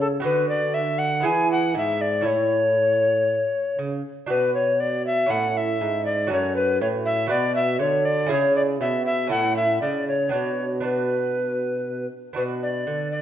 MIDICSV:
0, 0, Header, 1, 4, 480
1, 0, Start_track
1, 0, Tempo, 505051
1, 235, Time_signature, 4, 2, 24, 8
1, 12561, End_track
2, 0, Start_track
2, 0, Title_t, "Recorder"
2, 0, Program_c, 0, 74
2, 10, Note_on_c, 0, 69, 90
2, 67, Note_off_c, 0, 69, 0
2, 238, Note_on_c, 0, 71, 99
2, 460, Note_off_c, 0, 71, 0
2, 466, Note_on_c, 0, 74, 107
2, 704, Note_on_c, 0, 76, 102
2, 718, Note_off_c, 0, 74, 0
2, 936, Note_on_c, 0, 78, 113
2, 951, Note_off_c, 0, 76, 0
2, 1192, Note_on_c, 0, 80, 105
2, 1206, Note_off_c, 0, 78, 0
2, 1429, Note_off_c, 0, 80, 0
2, 1444, Note_on_c, 0, 78, 103
2, 1671, Note_off_c, 0, 78, 0
2, 1685, Note_on_c, 0, 76, 106
2, 1913, Note_on_c, 0, 74, 104
2, 1927, Note_off_c, 0, 76, 0
2, 2145, Note_on_c, 0, 73, 95
2, 2160, Note_off_c, 0, 74, 0
2, 3594, Note_off_c, 0, 73, 0
2, 4087, Note_on_c, 0, 71, 85
2, 4306, Note_off_c, 0, 71, 0
2, 4321, Note_on_c, 0, 73, 83
2, 4563, Note_on_c, 0, 74, 88
2, 4577, Note_off_c, 0, 73, 0
2, 4800, Note_off_c, 0, 74, 0
2, 4812, Note_on_c, 0, 76, 102
2, 5041, Note_on_c, 0, 78, 95
2, 5055, Note_off_c, 0, 76, 0
2, 5295, Note_on_c, 0, 76, 94
2, 5309, Note_off_c, 0, 78, 0
2, 5749, Note_off_c, 0, 76, 0
2, 5755, Note_on_c, 0, 74, 94
2, 5989, Note_off_c, 0, 74, 0
2, 6012, Note_on_c, 0, 73, 100
2, 6228, Note_off_c, 0, 73, 0
2, 6233, Note_on_c, 0, 71, 90
2, 6467, Note_off_c, 0, 71, 0
2, 6478, Note_on_c, 0, 73, 101
2, 6535, Note_off_c, 0, 73, 0
2, 6705, Note_on_c, 0, 76, 107
2, 6931, Note_off_c, 0, 76, 0
2, 6937, Note_on_c, 0, 74, 104
2, 7171, Note_off_c, 0, 74, 0
2, 7177, Note_on_c, 0, 76, 115
2, 7408, Note_off_c, 0, 76, 0
2, 7413, Note_on_c, 0, 73, 105
2, 7652, Note_on_c, 0, 74, 115
2, 7666, Note_off_c, 0, 73, 0
2, 7896, Note_off_c, 0, 74, 0
2, 7912, Note_on_c, 0, 73, 106
2, 8128, Note_off_c, 0, 73, 0
2, 8134, Note_on_c, 0, 74, 102
2, 8191, Note_off_c, 0, 74, 0
2, 8374, Note_on_c, 0, 76, 106
2, 8602, Note_off_c, 0, 76, 0
2, 8607, Note_on_c, 0, 76, 102
2, 8840, Note_off_c, 0, 76, 0
2, 8846, Note_on_c, 0, 78, 104
2, 9085, Note_off_c, 0, 78, 0
2, 9089, Note_on_c, 0, 76, 98
2, 9324, Note_off_c, 0, 76, 0
2, 9329, Note_on_c, 0, 74, 85
2, 9567, Note_off_c, 0, 74, 0
2, 9579, Note_on_c, 0, 73, 90
2, 9806, Note_off_c, 0, 73, 0
2, 9812, Note_on_c, 0, 73, 92
2, 10124, Note_off_c, 0, 73, 0
2, 10303, Note_on_c, 0, 71, 65
2, 11475, Note_off_c, 0, 71, 0
2, 11756, Note_on_c, 0, 71, 70
2, 11813, Note_off_c, 0, 71, 0
2, 12002, Note_on_c, 0, 74, 71
2, 12457, Note_off_c, 0, 74, 0
2, 12462, Note_on_c, 0, 74, 76
2, 12561, Note_off_c, 0, 74, 0
2, 12561, End_track
3, 0, Start_track
3, 0, Title_t, "Lute"
3, 0, Program_c, 1, 24
3, 0, Note_on_c, 1, 49, 65
3, 0, Note_on_c, 1, 56, 59
3, 0, Note_on_c, 1, 64, 52
3, 0, Note_on_c, 1, 68, 58
3, 184, Note_off_c, 1, 56, 0
3, 189, Note_on_c, 1, 59, 60
3, 190, Note_off_c, 1, 64, 0
3, 192, Note_off_c, 1, 49, 0
3, 196, Note_off_c, 1, 68, 0
3, 205, Note_on_c, 1, 66, 60
3, 225, Note_on_c, 1, 50, 65
3, 1131, Note_off_c, 1, 59, 0
3, 1142, Note_on_c, 1, 59, 56
3, 1144, Note_off_c, 1, 66, 0
3, 1145, Note_off_c, 1, 50, 0
3, 1155, Note_on_c, 1, 64, 55
3, 1167, Note_on_c, 1, 68, 58
3, 1181, Note_on_c, 1, 52, 64
3, 1625, Note_off_c, 1, 52, 0
3, 1659, Note_on_c, 1, 44, 62
3, 2095, Note_off_c, 1, 59, 0
3, 2099, Note_on_c, 1, 61, 55
3, 2102, Note_off_c, 1, 64, 0
3, 2106, Note_off_c, 1, 44, 0
3, 2108, Note_off_c, 1, 68, 0
3, 2113, Note_on_c, 1, 64, 54
3, 2123, Note_on_c, 1, 69, 56
3, 2133, Note_on_c, 1, 45, 58
3, 3282, Note_off_c, 1, 45, 0
3, 3598, Note_on_c, 1, 49, 57
3, 3814, Note_off_c, 1, 49, 0
3, 4015, Note_off_c, 1, 61, 0
3, 4022, Note_off_c, 1, 64, 0
3, 4027, Note_off_c, 1, 69, 0
3, 4052, Note_on_c, 1, 62, 51
3, 4060, Note_on_c, 1, 66, 51
3, 4085, Note_on_c, 1, 47, 57
3, 4996, Note_off_c, 1, 62, 0
3, 5000, Note_off_c, 1, 66, 0
3, 5001, Note_on_c, 1, 61, 53
3, 5004, Note_off_c, 1, 47, 0
3, 5017, Note_on_c, 1, 64, 53
3, 5029, Note_on_c, 1, 69, 56
3, 5037, Note_on_c, 1, 45, 59
3, 5479, Note_off_c, 1, 45, 0
3, 5522, Note_on_c, 1, 44, 57
3, 5947, Note_off_c, 1, 61, 0
3, 5955, Note_off_c, 1, 64, 0
3, 5957, Note_on_c, 1, 61, 57
3, 5959, Note_off_c, 1, 44, 0
3, 5962, Note_off_c, 1, 69, 0
3, 5965, Note_on_c, 1, 66, 55
3, 5982, Note_on_c, 1, 69, 61
3, 5989, Note_on_c, 1, 42, 63
3, 6431, Note_off_c, 1, 42, 0
3, 6474, Note_on_c, 1, 45, 68
3, 6900, Note_off_c, 1, 61, 0
3, 6901, Note_off_c, 1, 66, 0
3, 6906, Note_on_c, 1, 59, 60
3, 6911, Note_off_c, 1, 45, 0
3, 6913, Note_off_c, 1, 69, 0
3, 6913, Note_on_c, 1, 66, 56
3, 6930, Note_on_c, 1, 71, 64
3, 6938, Note_on_c, 1, 47, 65
3, 7382, Note_off_c, 1, 47, 0
3, 7408, Note_on_c, 1, 50, 67
3, 7849, Note_off_c, 1, 59, 0
3, 7853, Note_on_c, 1, 61, 58
3, 7855, Note_off_c, 1, 50, 0
3, 7855, Note_off_c, 1, 66, 0
3, 7863, Note_on_c, 1, 64, 59
3, 7864, Note_off_c, 1, 71, 0
3, 7877, Note_on_c, 1, 68, 60
3, 7887, Note_on_c, 1, 49, 67
3, 8332, Note_off_c, 1, 49, 0
3, 8371, Note_on_c, 1, 47, 68
3, 8800, Note_off_c, 1, 61, 0
3, 8805, Note_off_c, 1, 64, 0
3, 8812, Note_off_c, 1, 47, 0
3, 8812, Note_off_c, 1, 68, 0
3, 8813, Note_on_c, 1, 61, 55
3, 8828, Note_on_c, 1, 64, 59
3, 8834, Note_on_c, 1, 69, 56
3, 8849, Note_on_c, 1, 45, 61
3, 9293, Note_off_c, 1, 45, 0
3, 9335, Note_on_c, 1, 49, 58
3, 9767, Note_off_c, 1, 61, 0
3, 9774, Note_off_c, 1, 64, 0
3, 9777, Note_off_c, 1, 69, 0
3, 9779, Note_off_c, 1, 49, 0
3, 9779, Note_on_c, 1, 59, 48
3, 9792, Note_on_c, 1, 62, 47
3, 9801, Note_on_c, 1, 66, 51
3, 9815, Note_on_c, 1, 47, 50
3, 10256, Note_off_c, 1, 59, 0
3, 10267, Note_off_c, 1, 62, 0
3, 10268, Note_on_c, 1, 59, 49
3, 10279, Note_on_c, 1, 62, 45
3, 10280, Note_off_c, 1, 66, 0
3, 10294, Note_on_c, 1, 66, 47
3, 11474, Note_off_c, 1, 47, 0
3, 11698, Note_off_c, 1, 59, 0
3, 11704, Note_off_c, 1, 62, 0
3, 11711, Note_off_c, 1, 66, 0
3, 11719, Note_on_c, 1, 59, 41
3, 11732, Note_on_c, 1, 62, 41
3, 11745, Note_on_c, 1, 66, 40
3, 11754, Note_on_c, 1, 47, 44
3, 12198, Note_off_c, 1, 47, 0
3, 12230, Note_on_c, 1, 50, 44
3, 12561, Note_off_c, 1, 50, 0
3, 12561, Note_off_c, 1, 59, 0
3, 12561, Note_off_c, 1, 62, 0
3, 12561, Note_off_c, 1, 66, 0
3, 12561, End_track
4, 0, Start_track
4, 0, Title_t, "Trombone"
4, 0, Program_c, 2, 57
4, 0, Note_on_c, 2, 49, 78
4, 216, Note_off_c, 2, 49, 0
4, 231, Note_on_c, 2, 50, 78
4, 1187, Note_on_c, 2, 52, 84
4, 1201, Note_off_c, 2, 50, 0
4, 1668, Note_on_c, 2, 44, 72
4, 1682, Note_off_c, 2, 52, 0
4, 2153, Note_on_c, 2, 45, 69
4, 2167, Note_off_c, 2, 44, 0
4, 3330, Note_off_c, 2, 45, 0
4, 3595, Note_on_c, 2, 49, 64
4, 3819, Note_off_c, 2, 49, 0
4, 4084, Note_on_c, 2, 47, 60
4, 5003, Note_off_c, 2, 47, 0
4, 5041, Note_on_c, 2, 45, 71
4, 5535, Note_on_c, 2, 44, 73
4, 5549, Note_off_c, 2, 45, 0
4, 6009, Note_on_c, 2, 42, 68
4, 6023, Note_off_c, 2, 44, 0
4, 6480, Note_on_c, 2, 45, 74
4, 6494, Note_off_c, 2, 42, 0
4, 6944, Note_off_c, 2, 45, 0
4, 6950, Note_on_c, 2, 47, 82
4, 7429, Note_on_c, 2, 50, 79
4, 7444, Note_off_c, 2, 47, 0
4, 7904, Note_on_c, 2, 49, 78
4, 7919, Note_off_c, 2, 50, 0
4, 8373, Note_on_c, 2, 47, 69
4, 8388, Note_off_c, 2, 49, 0
4, 8849, Note_off_c, 2, 47, 0
4, 8854, Note_on_c, 2, 45, 77
4, 9324, Note_off_c, 2, 45, 0
4, 9335, Note_on_c, 2, 49, 66
4, 9808, Note_off_c, 2, 49, 0
4, 9812, Note_on_c, 2, 47, 64
4, 11476, Note_off_c, 2, 47, 0
4, 11758, Note_on_c, 2, 47, 52
4, 12236, Note_on_c, 2, 50, 50
4, 12251, Note_off_c, 2, 47, 0
4, 12561, Note_off_c, 2, 50, 0
4, 12561, End_track
0, 0, End_of_file